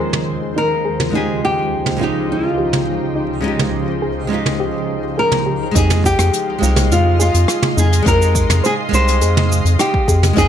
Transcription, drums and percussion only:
0.13 mid tom
1.00 mid tom
1.86 mid tom
2.73 mid tom
3.59 mid tom
4.46 mid tom
5.32 mid tom
5.75 kick, closed hi-hat, cabasa
5.90 mid tom, cabasa
6.04 kick, cabasa
6.19 cross-stick, closed hi-hat, cabasa
6.33 closed hi-hat, cabasa
6.63 cabasa
6.76 closed hi-hat, mid tom, cabasa
6.91 closed hi-hat, cabasa
7.20 cabasa
7.34 closed hi-hat, cabasa
7.48 cross-stick, closed hi-hat, cabasa
7.63 mid tom
7.78 cabasa
7.93 closed hi-hat, cabasa
8.06 kick, closed hi-hat, cabasa
8.22 cabasa
8.35 kick, cabasa
8.50 cross-stick, closed hi-hat, mid tom, cabasa
8.65 closed hi-hat, cabasa
8.94 cabasa
9.08 closed hi-hat, cabasa
9.21 closed hi-hat, cabasa
9.37 mid tom
9.52 cabasa
9.65 closed hi-hat, cabasa
9.79 cross-stick, closed hi-hat, cabasa
9.94 kick
10.08 kick, cabasa
10.23 closed hi-hat, mid tom, cabasa
10.36 kick, closed hi-hat, cabasa

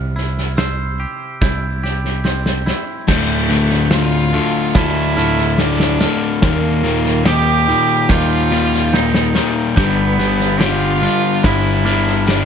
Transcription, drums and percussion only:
0.17 snare
0.38 snare
0.58 snare
1.42 kick, snare
1.84 snare
2.05 snare
2.25 snare
2.46 snare
2.67 snare
3.08 kick, snare, crash
3.50 snare
3.70 snare
3.91 snare
4.75 kick, snare
5.17 snare
5.38 snare
5.58 snare
5.80 snare
6.01 snare
6.42 kick, snare
6.84 snare
7.05 snare
7.26 snare
8.09 kick, snare
8.52 snare
8.73 snare
8.94 snare
9.14 snare
9.35 snare
9.77 kick, snare
10.19 snare
10.40 snare
10.61 snare
11.44 kick, snare
11.86 snare
12.07 snare
12.29 snare

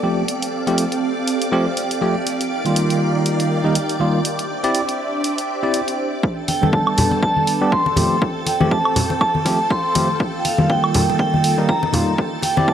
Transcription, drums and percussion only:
0.28 closed hi-hat
0.42 closed hi-hat
0.67 closed hi-hat
0.78 closed hi-hat
0.92 closed hi-hat
1.27 closed hi-hat
1.42 closed hi-hat
1.77 closed hi-hat
1.91 closed hi-hat
2.27 closed hi-hat
2.41 closed hi-hat
2.66 closed hi-hat
2.76 closed hi-hat
2.90 closed hi-hat
3.26 closed hi-hat
3.40 closed hi-hat
3.75 closed hi-hat
3.89 closed hi-hat
4.25 closed hi-hat
4.39 closed hi-hat
4.64 closed hi-hat
4.75 closed hi-hat
4.89 closed hi-hat
5.24 closed hi-hat
5.38 closed hi-hat
5.74 closed hi-hat
5.88 closed hi-hat
6.23 kick
6.48 open hi-hat, muted conga
6.63 high conga
6.73 kick
6.87 high woodblock
6.98 open hi-hat, low conga
7.11 muted conga
7.23 kick
7.37 high conga
7.47 open hi-hat
7.72 kick
7.86 muted conga
7.96 open hi-hat, high conga, low conga
8.22 kick
8.46 open hi-hat, muted conga
8.61 high conga
8.71 kick
8.85 high woodblock
8.96 open hi-hat, low conga
9.10 muted conga
9.21 kick, high woodblock
9.35 high conga
9.46 kick, open hi-hat
9.70 kick
9.95 open hi-hat, high conga
10.20 kick
10.45 open hi-hat, muted conga
10.58 high conga
10.70 kick
10.84 high woodblock
10.94 open hi-hat, low conga
11.10 muted conga
11.19 kick
11.34 high conga
11.44 open hi-hat
11.69 kick
11.83 muted conga
11.93 open hi-hat, high conga, low conga
12.18 kick
12.42 open hi-hat, muted conga
12.57 high conga
12.68 kick

